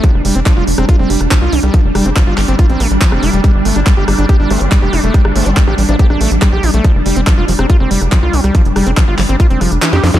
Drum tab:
HH |x-oxx-oxx-oxx-ox|x-oxx-oxxxoxx-ox|x-oxx-oxx-oxx-ox|x-oxx-oxx-oxx-ox|
CP |----x-------x---|----x-x-----x---|----x-------x---|----x-------x---|
SD |r---r--r---r---r|--r---r---r--r--|---r--r---r---r-|-r---r---r--r---|
BD |o---o---o---o---|o---o---o---o---|o---o---o---o---|o---o---o---o---|

HH |x-oxx-oxx-oxx-ox|xxoxx-oxxxoxxxox|
CP |----x-------x---|----x-x-----x---|
SD |r---r--r---r---r|--r---r---r-oooo|
BD |o---o---o---o---|o---o---o-------|